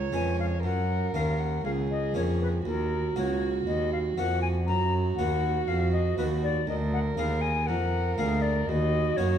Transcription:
Already playing: C#2 C#5
0.12 F2 G#3 C#4 B4 G#5
0.40 F5
0.63 F#2 A#4 F#5
1.14 D#2 A#3 C#4 A#4 F5
1.40 F#5
1.65 C#2 G#4 F5
1.91 D#5
2.14 F2 A#3 C#4 A#4 C#5
2.42 B4
2.65 D#2 F#4 A#4
3.16 C#2 A#3 F#4 A#4 C#5
3.66 D#2 D#5
3.93 F5
4.17 F2 A#3 F#4 A#4 F#5
4.42 G#5
4.67 F#2 F#4 A#5
5.16 D#2 A#3 F#4 A#4 F#5
5.68 F2 F5
5.92 D#5
6.18 D#2 A#3 F#4 A#4 B4
6.43 D5
6.67 D2 A#4 D#5
6.93 F#5
7.17 D#2 A#3 G#4 A#4 F5
7.41 G#5
7.67 F2 A#4 F#5
8.18 D2 A#3 G#4 A#4 F5
8.42 D5
8.67 D#2 F#4 D#5
9.17 F#2 A#3 F#4 A#4 C#5

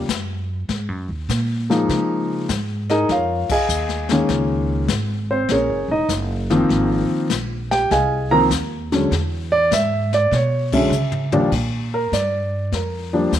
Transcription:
0.09 F#2, kick, snare, hi-hat pedal
0.69 G#2, brush sweep, kick, snare
0.88 F#2
1.09 D#2
1.29 A#2, kick, snare, hi-hat pedal
1.70 F3 G#3 A#3 D#4, snare
1.89 C#3, brush sweep, kick, snare
2.49 G#2, kick, snare, hi-hat pedal
2.90 D#4 G#4 A#4 D#5, snare
3.09 F2 F4 A#4 C#5 F5, brush sweep, kick, snare
3.49 G#4 D#5 F5 G#5, muted upright bass stroke, kick, crash
3.69 D#2, hi-hat pedal
3.89 snare
4.09 D#3 G#3 A#3 C#4, snare
4.29 C#2, brush sweep, kick, snare
4.88 G#1, kick, snare, hi-hat pedal
5.31 C4 C5
5.49 A#1 C#4 G#4 A#4 C#5, brush sweep, kick, snare
5.69 F#1
5.88 E1 D#4 D#5
6.09 F#1, kick, snare, hi-hat pedal
6.50 D#3 F3 A#3 C4, snare
6.69 G#1, brush sweep, kick, snare
7.09 muted upright bass stroke
7.29 A#1, kick, snare, hi-hat pedal
7.71 G4 G5, snare
7.91 C2 G#4 D#5 F5 G#5, brush sweep, kick, snare
8.31 D#3 F3 A#3 C4 A#4 A#5
8.50 D#2, kick, snare, hi-hat pedal
8.92 D3 F#3 G#3 C#4, snare
9.11 E2, brush sweep, kick, snare
9.52 D5
9.71 G#2 E5, kick, snare, hi-hat pedal
10.13 D5, snare
10.31 B2 C#5, brush sweep, kick, snare
10.73 D3 F#3 G#3 C#4 E5, kick, crash
10.90 C#3, hi-hat pedal
11.12 floor tom
11.32 D#2 F3 G3 A#3 D4, floor tom
11.52 A#2, brush sweep, kick, snare, crash
11.94 A#4
12.12 G2 D5, kick, snare, hi-hat pedal
12.72 F2 A#4, brush sweep, kick, snare
13.13 F3 G3 A#3 D4
13.32 D#2, kick, snare, hi-hat pedal

